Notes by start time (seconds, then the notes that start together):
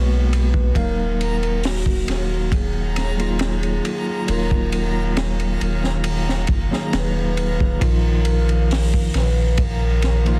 Already playing: B1 G#3 A#3 B3 F#4 B4 A#5
0.33 ride
0.54 kick
0.73 D#1 D#3 F#3 A#3 D#4 A#4 F5, kick, ride
1.21 ride
1.43 ride
1.63 F#4, snare, open hi-hat
1.86 kick
2.07 D#1, snare, ride
2.52 G#4, kick, ride
2.96 snare, ride
3.17 F#3 A#3 D#4 F4, ride
3.39 snare, ride
3.63 ride
3.85 ride
4.27 D#1 F#3 A#3 D#4 F4 A#4, ride
4.51 kick
4.72 ride
5.17 snare, ride
5.40 ride
5.61 D#1, ride
5.84 snare
6.04 ride
6.29 snare
6.47 F#1, kick, ride
6.71 F#3 A#3 D#4 G#4, snare
6.93 D#1 B4, snare, ride
7.37 ride
7.60 kick
7.79 A#1 A#2 F3 D#4, kick, ride
7.83 F4 A#4
8.25 ride
8.49 ride
8.71 snare, open hi-hat
8.94 kick
9.14 A#1 B4, snare, ride
9.57 kick, ride
9.62 A#4
10.02 snare, ride
10.24 F3 A#3 D#4 F4, ride